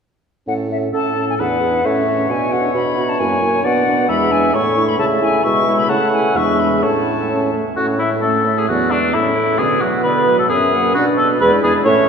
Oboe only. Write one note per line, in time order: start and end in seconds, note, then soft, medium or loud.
0.93 1.41 A4 soft
1.40 1.87 B4 soft
1.86 3.66 C#5 soft
3.65 4.08 D5 medium
4.08 4.56 E5 medium
4.54 4.99 C#5 medium
4.99 5.43 E5 medium
5.44 5.89 E5 medium
5.89 6.38 F#5 medium
6.36 6.85 E5 medium
6.83 7.54 C#5 soft
7.76 7.87 F#4 medium
7.99 8.10 E4 soft
8.22 8.60 A4 medium
8.58 8.68 G#4 soft
8.68 8.92 F#4 medium
8.91 9.15 D4 medium
9.13 9.60 E4 medium
9.59 9.83 G#4 medium
9.81 10.03 F#4 medium
10.04 10.38 B4 medium
10.39 10.49 A4 medium
10.49 10.94 G#4 medium
10.95 11.05 F#4 medium
11.18 11.28 A4 medium
11.41 11.51 B4 medium
11.63 11.73 G#4 medium
11.85 12.09 C#5 medium